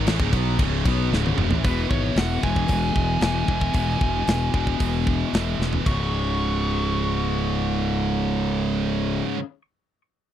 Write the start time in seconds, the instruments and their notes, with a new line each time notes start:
Already playing: string section E3 C#4 G#4 C#5
0.06 fingered electric bass A1, distorted electric guitar A2 E3, snare, crash
0.19 fingered electric bass C#1, distorted electric guitar C#2 G#2, kick
0.32 fingered electric bass B1, distorted electric guitar B2 F#3 B3, kick, crash
0.58 fingered electric bass C#1, distorted electric guitar C#2 G#2 C#3, kick, crash
0.84 fingered electric bass B1, distorted electric guitar B2 F#3 B3, kick, crash
1.11 fingered electric bass C#1, distorted electric guitar C#2 G#2 C#3, snare
1.26 high tom
1.36 fingered electric bass E1, distorted electric guitar E2 B2, mid tom
1.51 fingered electric bass A1, distorted electric guitar A2 E3, floor tom
1.64 fingered electric bass E1, distorted electric guitar E2 B2 E3, lead electric guitar B4, kick, open hi-hat
1.90 fingered electric bass G#1, lead electric guitar C#5, kick
2.16 fingered electric bass E1, lead electric guitar F#5, snare, open hi-hat
2.42 fingered electric bass E1, distorted electric guitar E2 B2 E3, lead electric guitar G#5, kick
2.56 kick
2.68 fingered electric bass E1, kick, open hi-hat
2.96 fingered electric bass E1, kick
3.21 fingered electric bass E1, distorted electric guitar E2 B2 E3, snare, open hi-hat
3.48 fingered electric bass E1, distorted electric guitar E2 B2 E3, kick
3.61 kick
3.73 fingered electric bass E1, distorted electric guitar E2 B2 E3, kick, open hi-hat
4.01 fingered electric bass E1, kick
4.28 fingered electric bass E1, snare, open hi-hat
4.53 fingered electric bass E1, distorted electric guitar E2 B2 E3, kick
4.67 kick
4.80 fingered electric bass E1, kick, open hi-hat
5.07 kick
5.33 fingered electric bass E1, distorted electric guitar E2 B2 E3, snare, open hi-hat
5.59 fingered electric bass E1, distorted electric guitar E2 B2 E3, snare
5.73 floor tom
5.85 fingered electric bass C#1, distorted electric guitar C#2 G#2 C#3, lead electric guitar C#6, kick, crash